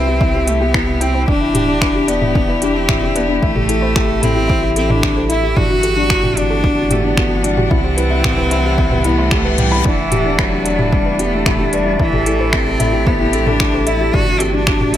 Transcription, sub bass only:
Already playing: C2
1.28 E1
3.43 A1
5.57 G1
7.71 C2
9.85 E1
12.00 A1
14.14 G1

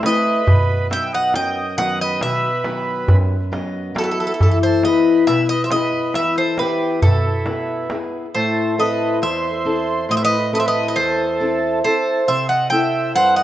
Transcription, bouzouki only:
0.06 D#5
0.93 G5
1.14 F#5
1.36 G5
1.78 F#5
2.01 D#5
2.23 E5
3.98 A4
4.04 A4
4.11 A4
4.20 A4
4.27 A4
4.34 A4
4.43 A4
4.51 A4
4.63 C5
4.85 D#5
5.27 E5
5.49 D#5
5.64 E5
5.72 D#5
6.15 E5
6.38 C5
6.59 B4
7.02 A4
8.35 C5
8.80 D#5
9.23 E5
10.11 D#5
10.17 E5
10.25 D#5
10.55 D#5
10.60 E5
10.68 D#5
10.88 D#5
10.96 C5
11.84 C5
12.28 E5
12.49 F#5
12.70 G5
13.16 F#5
13.36 F#5

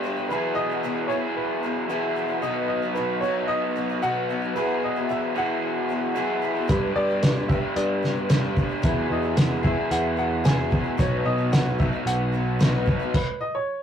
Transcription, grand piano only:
0.29 B4
0.55 D#5
1.08 C#5
1.37 B4
2.42 D#5
2.68 D#5
2.95 B4
3.21 C#5
3.41 E5
3.48 D#5
4.03 F#5
4.55 B4
4.84 D#5
5.11 E5
5.38 F#5
6.69 B4
6.96 D5
7.49 E5
7.76 D5
8.86 B4
9.12 D#5
9.65 E5
9.91 F#5
10.18 F#5
10.45 G#5
10.99 C#5
11.18 C#5
11.25 D#5
11.52 F#5
11.80 E5
12.07 F#5
13.15 B4
13.41 D#5
13.55 C#5

